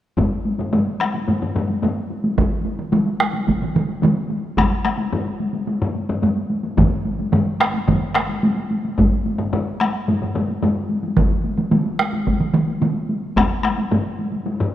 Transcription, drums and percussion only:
0.17 taiko medium
0.17 taiko low-mid medium
0.17 taiko high medium
0.45 taiko high medium
0.59 taiko low-mid medium
0.59 taiko high soft
0.73 taiko low-mid medium
0.73 taiko high medium
1.00 taiko rim medium
1.00 taiko high soft
1.14 taiko high medium
1.28 taiko low-mid medium
1.28 taiko high medium
1.42 taiko low-mid medium
1.55 taiko low-mid medium
1.55 taiko high soft
1.69 taiko high soft
1.82 taiko low-mid medium
1.82 taiko high medium
2.10 taiko high soft
2.24 taiko high medium
2.38 taiko medium
2.38 taiko mid loud
2.38 taiko high medium
2.65 taiko high medium
2.79 taiko mid medium
2.92 taiko mid medium
2.92 taiko high medium
3.20 taiko rim medium
3.20 taiko high soft
3.33 taiko high medium
3.47 taiko medium
3.47 taiko mid medium
3.47 taiko high medium
3.62 taiko mid medium
3.75 taiko mid medium
3.75 taiko high medium
3.89 taiko high soft
4.02 taiko mid medium
4.02 taiko high medium
4.30 taiko high medium
4.57 taiko rim medium
4.57 taiko medium
4.57 taiko high medium
4.85 taiko rim medium
4.85 taiko high medium
4.98 taiko high medium
5.12 taiko low-mid medium
5.12 taiko high medium
5.40 taiko high medium
5.54 taiko high medium
5.67 taiko high medium
5.82 taiko low-mid medium
5.95 taiko high soft
6.09 taiko low-mid medium
6.09 taiko high soft
6.22 taiko low-mid medium
6.22 taiko high medium
6.50 taiko high soft
6.63 taiko high medium
6.77 taiko loud
6.77 taiko low-mid medium
6.77 taiko mid medium
6.77 taiko high medium
7.05 taiko high soft
7.19 taiko high soft
7.33 taiko low-mid medium
7.33 taiko mid medium
7.33 taiko high medium
7.60 taiko rim medium
7.60 taiko high soft
7.74 taiko high medium
7.88 taiko medium
7.88 taiko low-mid medium
7.88 taiko mid medium
7.88 taiko high medium
8.15 taiko rim medium
8.15 taiko high soft
8.29 taiko high soft
8.43 taiko high medium
8.71 taiko high soft
8.85 taiko high soft
8.98 taiko medium
8.98 taiko low-mid medium
8.98 taiko high medium
9.26 taiko high medium
9.39 taiko low-mid medium
9.39 taiko high soft
9.53 taiko low-mid medium
9.53 taiko high medium
9.80 taiko rim medium
9.80 taiko high medium
10.08 taiko low-mid medium
10.08 taiko high medium
10.22 taiko low-mid medium
10.35 taiko low-mid medium
10.35 taiko high soft
10.48 taiko high soft
10.63 taiko low-mid medium
10.63 taiko high medium
10.89 taiko high medium
11.03 taiko high medium
11.17 taiko medium
11.17 taiko mid medium
11.17 taiko high medium
11.44 taiko high medium
11.57 taiko mid medium
11.57 taiko high medium
11.71 taiko mid medium
11.71 taiko high medium
11.99 taiko rim medium
11.99 taiko high soft
12.13 taiko high medium
12.27 taiko medium
12.27 taiko mid medium
12.27 taiko high medium
12.40 taiko mid medium
12.54 taiko mid medium
12.54 taiko high soft
12.68 taiko high soft
12.82 taiko mid medium
12.82 taiko high medium
13.09 taiko high soft
13.36 taiko rim medium
13.36 taiko loud
13.36 taiko high medium
13.63 taiko rim medium
13.63 taiko high soft
13.78 taiko high soft
13.91 taiko low-mid medium
13.91 taiko high medium
14.19 taiko high soft
14.32 taiko high soft
14.46 taiko high medium
14.60 taiko low-mid medium

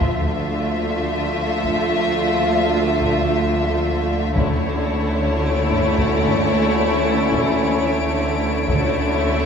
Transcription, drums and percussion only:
0.01 taiko medium
1.65 taiko medium
3.00 taiko medium
4.37 taiko medium
5.72 taiko low soft
5.98 taiko medium
6.26 taiko low soft
7.32 taiko medium
8.68 taiko medium

